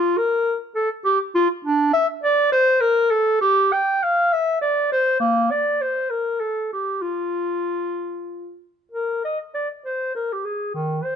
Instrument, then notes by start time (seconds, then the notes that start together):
clarinet
Already playing: F4
0.17 A#4
0.75 A4
1.05 G4
1.35 F4
1.65 D4
1.93 E5
2.23 D5
2.52 C5
2.81 A#4
3.11 A4
3.41 G4
3.72 G5
4.03 F5
4.33 E5
4.61 D5
4.92 C5
5.20 A#3
5.51 D5
5.81 C5
6.10 A#4
6.40 A4
6.73 G4
7.02 F4
8.92 A#4
9.24 D#5
9.54 D5
9.85 C5
10.15 A#4
10.32 G4
10.45 G#4
10.74 D#3
11.03 C5